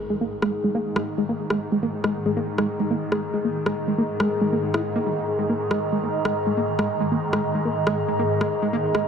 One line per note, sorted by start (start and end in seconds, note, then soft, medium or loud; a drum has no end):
0.00 9.08 G#2 medium
0.00 9.08 D#3 medium
0.00 9.08 G#4 medium
0.00 9.08 D#5 medium
0.00 9.08 A#5 medium
0.10 0.15 G#3 medium
0.21 0.24 A#3 medium
0.42 0.50 G#3 medium
0.42 cross-stick medium
0.64 0.69 G#3 medium
0.75 0.78 A#3 medium
0.96 1.04 G#3 medium
0.96 cross-stick medium
1.18 1.23 G#3 medium
1.29 1.32 A#3 medium
1.50 1.58 G#3 medium
1.50 cross-stick medium
1.72 1.77 G#3 medium
1.83 1.86 A#3 medium
2.04 2.12 G#3 medium
2.04 cross-stick medium
2.26 2.31 G#3 medium
2.37 2.40 A#3 medium
2.58 2.66 G#3 medium
2.58 cross-stick medium
2.80 2.85 G#3 medium
2.90 2.94 A#3 medium
3.12 3.20 G#3 medium
3.12 cross-stick medium
3.34 3.39 G#3 medium
3.45 3.48 A#3 medium
3.66 3.74 G#3 medium
3.66 cross-stick medium
3.88 3.93 G#3 medium
3.98 4.02 A#3 medium
4.20 4.28 G#3 medium
4.20 cross-stick medium
4.41 4.47 G#3 medium
4.53 4.56 A#3 medium
4.63 4.66 G#3 medium
4.74 4.82 E4 medium
4.74 cross-stick medium
4.96 4.99 A#3 loud
5.06 5.10 G3 medium
5.39 5.44 G#3 medium
5.49 5.53 A#3 medium
5.71 5.79 G#3 medium
5.71 cross-stick medium
5.92 5.98 G#3 medium
6.03 6.07 A#3 medium
6.25 6.33 G#3 medium
6.25 cross-stick medium
6.47 6.52 G#3 medium
6.57 6.61 A#3 medium
6.79 6.87 G#3 medium
6.79 cross-stick medium
7.00 7.06 G#3 medium
7.12 7.15 A#3 medium
7.33 7.41 G#3 medium
7.33 cross-stick medium
7.55 7.60 G#3 medium
7.65 7.69 A#3 medium
7.87 7.95 G#3 medium
7.87 cross-stick medium
8.08 8.14 G#3 medium
8.19 8.23 A#3 medium
8.41 8.49 G#3 medium
8.41 cross-stick medium
8.62 8.68 G#3 medium
8.73 8.76 A#3 medium
8.95 9.03 G#3 medium
8.95 cross-stick medium